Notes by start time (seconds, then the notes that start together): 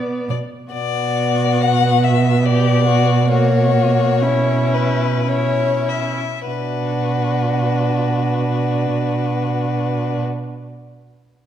Already playing: B3 D5
0.29 B2 D5
0.73 B2 B3 F#4 D5
1.61 F#5
2.04 E5
2.45 G4 D5
2.86 F#4
3.29 A#3 F#4 C#5
3.74 A#3
4.21 C#4 E4
4.74 B4
5.28 C#4 E4 C#5
5.89 E5
6.47 B2 D4 F#4 B4